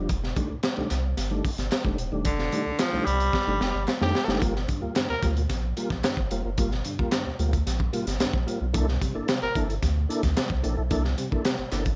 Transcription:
0.09 sub bass F1, kick, closed hi-hat
0.24 snare
0.36 tonewheel organ D#3 G3 A3 D4, kick, closed hi-hat
0.50 sub bass C2, tonewheel organ A3 D4
0.63 snare, clap, closed hi-hat
0.76 sub bass C2, tonewheel organ D#3 G3 A3 D4
0.90 sub bass C2, snare, clap, closed hi-hat
1.17 sub bass G1, snare, closed hi-hat
1.31 tonewheel organ D#3 G3 A3 D4
1.45 tonewheel organ A3 D4, kick, open hi-hat
1.58 sub bass G1, snare, closed hi-hat
1.72 snare, clap, closed hi-hat
1.85 sub bass F1, tonewheel organ D#3 G3 A3 D4, kick
1.98 sub bass D#1, closed hi-hat
2.12 sub bass E1, tonewheel organ D#3 G3 A3 D4
2.25 sub bass F1, tenor saxophone D3, kick, closed hi-hat
2.39 snare
2.52 tonewheel organ D#3 G3 A3 D4, closed hi-hat
2.66 sub bass C2, tonewheel organ A3 D4
2.79 tenor saxophone F3, snare, clap, closed hi-hat
2.92 sub bass C2, tonewheel organ D#3 G3 A3 D4
3.05 sub bass C2, tenor saxophone G3, closed hi-hat
3.20 closed hi-hat
3.33 kick, snare
3.47 sub bass G1, tonewheel organ D#3 G3 A3 D4
3.60 sub bass F1, tonewheel organ A3 D4, trombone G4, snare
3.75 sub bass G1
3.88 snare, clap
4.01 sub bass F2, tonewheel organ D#3 G3 A3 D4, trombone G4, snare
4.15 snare
4.28 sub bass F#1, tonewheel organ D#3 G3 A3 D4, snare
4.41 sub bass G1, tonewheel organ G3 A#3 F4, kick, closed hi-hat
4.56 snare
4.68 tonewheel organ G2 D3, kick, closed hi-hat
4.81 sub bass D2, tonewheel organ G3 A#3 F4
4.95 tonewheel organ G2 D3, snare, clap, closed hi-hat
5.10 sub bass D2, trombone A#4
5.22 sub bass D2, tonewheel organ G3 A#3 F4, kick, snare, closed hi-hat
5.36 tonewheel organ A#3 F4, closed hi-hat
5.49 sub bass A#1, kick, snare, closed hi-hat
5.77 tonewheel organ G3 A#3 F4, closed hi-hat
5.90 sub bass A#1, kick, snare
6.03 tonewheel organ G2 D3, snare, clap, closed hi-hat
6.17 sub bass G1, kick
6.31 sub bass F1, tonewheel organ G3 A#3 F4, closed hi-hat
6.45 sub bass F#1, tonewheel organ A#3 F4
6.58 sub bass G1, tonewheel organ G3 A#3 F4, kick, closed hi-hat
6.71 snare
6.84 tonewheel organ G2 D3, closed hi-hat
6.98 sub bass D2, tonewheel organ G3 A#3 F4, kick
7.11 tonewheel organ G2 D3, snare, clap, closed hi-hat
7.26 sub bass D2
7.39 sub bass D2, tonewheel organ G3 A#3 F4, closed hi-hat
7.52 tonewheel organ A#3 F4, kick, closed hi-hat
7.67 sub bass A#1, snare, closed hi-hat
7.80 kick
7.93 tonewheel organ G3 A#3 F4, closed hi-hat
8.07 sub bass G1, snare, closed hi-hat
8.20 sub bass A#1, tonewheel organ G2 D3, snare, clap, closed hi-hat
8.34 sub bass A#1, kick
8.46 tonewheel organ G3 A#3 F4, closed hi-hat
8.61 sub bass B1, tonewheel organ A#3 F4
8.73 sub bass C2, tonewheel organ A#3 D4 E4 A4, kick, closed hi-hat
8.89 snare
9.01 tonewheel organ C3 G3, kick, closed hi-hat
9.15 sub bass G1, tonewheel organ A#3 D4 E4 A4
9.28 tonewheel organ C3 G3, snare, clap, closed hi-hat
9.42 sub bass G1, trombone A#4
9.55 sub bass G1, tonewheel organ A#3 D4 E4 A4, kick, closed hi-hat
9.69 tonewheel organ E4 A4, closed hi-hat
9.82 sub bass D2, kick, snare, closed hi-hat
10.09 tonewheel organ A#3 D4 E4 A4, closed hi-hat
10.23 sub bass D2, kick, snare, closed hi-hat
10.36 tonewheel organ C3 G3, snare, clap, closed hi-hat
10.50 sub bass C2, kick
10.63 sub bass A#1, tonewheel organ A#3 D4 E4 A4, closed hi-hat
10.77 sub bass B1, tonewheel organ E4 A4
10.90 sub bass C2, tonewheel organ A#3 D4 E4 A4, kick, closed hi-hat
11.05 snare
11.18 tonewheel organ C3 G3, closed hi-hat
11.31 sub bass G1, tonewheel organ A#3 D4 E4 A4, kick
11.45 tonewheel organ C3 G3, snare, clap, closed hi-hat
11.58 sub bass G1
11.71 sub bass G1, tonewheel organ A#3 D4 E4 A4, snare, clap, closed hi-hat
11.85 tonewheel organ E4 A4, kick, closed hi-hat

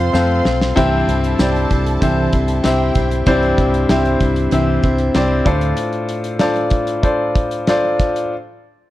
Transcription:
Already playing: grand piano C3 C4 F4 A4 C5 F5, steel-string acoustic guitar C4 F4 C5, violin section C5 C6
0.13 fingered electric bass F2, steel-string acoustic guitar A3 C4 F4 C5, grand piano C4 F4 A4 C5 F5, snare, tambourine
0.45 fingered electric bass B1, steel-string acoustic guitar C4 F4 C5, snare
0.61 snare
0.76 fingered electric bass C2, grand piano G2 C4 E4 G4 C5 E5, steel-string acoustic guitar C3 E3 G3 C4 E4 C5, violin section A4 A5, kick, closed hi-hat
1.08 fingered electric bass C2, steel-string acoustic guitar G3 C4 E4 C5, closed hi-hat
1.24 closed hi-hat
1.39 fingered electric bass C2, steel-string acoustic guitar G3 C4 E4 C5, grand piano C4 E4 G4 C5 D5, snare, closed hi-hat, tambourine
1.56 closed hi-hat
1.70 fingered electric bass C2, steel-string acoustic guitar G3 C4 E4 C5, kick, closed hi-hat
1.87 closed hi-hat
2.01 fingered electric bass C2, steel-string acoustic guitar C3 E3 G3 C4 E4 C5, grand piano C4 E4 G4 C5 E5, kick, closed hi-hat
2.33 fingered electric bass C2, steel-string acoustic guitar G3 C4 E4 C5, kick, closed hi-hat
2.48 closed hi-hat
2.63 fingered electric bass C2, steel-string acoustic guitar G3 C4 E4 C5, grand piano C4 E4 G4 C5 E5, violin section G4 G5, snare, closed hi-hat, tambourine
2.95 fingered electric bass B1, steel-string acoustic guitar G3 C4 E4 C5, kick, closed hi-hat
3.11 closed hi-hat
3.26 fingered electric bass C2, grand piano G2 C4 E4 G4 C5 D5, steel-string acoustic guitar C3 E3 G3 C4 E4 C5, kick, closed hi-hat
3.42 closed hi-hat
3.58 fingered electric bass C2, steel-string acoustic guitar G3 C4 E4 C5, kick, closed hi-hat
3.74 closed hi-hat
3.89 fingered electric bass C2, steel-string acoustic guitar G3 C4 E4 C5, grand piano C4 E4 G4 C5 E5, snare, closed hi-hat
4.05 closed hi-hat
4.20 fingered electric bass C2, steel-string acoustic guitar G3 C4 E4 C5, kick, closed hi-hat
4.36 closed hi-hat
4.51 fingered electric bass C2, steel-string acoustic guitar C3 E3 G3 C4 E4 C5, grand piano C4 E4 G4 C5 E5, closed hi-hat
4.83 fingered electric bass C2, steel-string acoustic guitar G3 C4 E4 C5, kick, closed hi-hat
4.98 closed hi-hat
5.14 fingered electric bass C2, steel-string acoustic guitar G3 C4 E4 C5, grand piano C4 E4 G4 C5 D5, snare, closed hi-hat
5.45 fingered electric bass D2, grand piano A2 D4 F4 A4 C5 D5, steel-string acoustic guitar C4 F4 C5, kick, closed hi-hat
5.61 closed hi-hat
5.77 closed hi-hat
5.93 closed hi-hat
6.09 closed hi-hat
6.24 closed hi-hat
6.39 grand piano D4 F4 A4 C5 D5, snare, closed hi-hat
6.56 closed hi-hat
6.70 kick, closed hi-hat
6.87 closed hi-hat
7.02 grand piano D4 F4 A4 C5 D5, kick, closed hi-hat
7.35 kick, closed hi-hat
7.51 closed hi-hat
7.67 grand piano D4 F4 A4 C5 D5, snare, closed hi-hat
7.99 kick, snare, closed hi-hat
8.16 closed hi-hat

